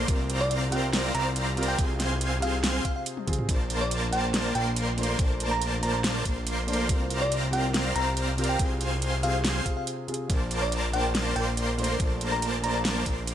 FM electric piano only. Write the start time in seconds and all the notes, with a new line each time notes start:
0.41 D5
0.72 G5
1.15 A#5
1.68 G5
2.42 F5
2.85 F5
2.96 F5
3.81 D5
4.13 G5
4.55 G5
5.51 A#5
5.83 A#5
5.94 A#5
7.22 D5
7.53 G5
7.96 A#5
8.49 G5
9.23 F5
9.66 F5
9.77 F5
10.62 D5
10.93 G5
11.36 G5
12.32 A#5
12.64 A#5
12.75 A#5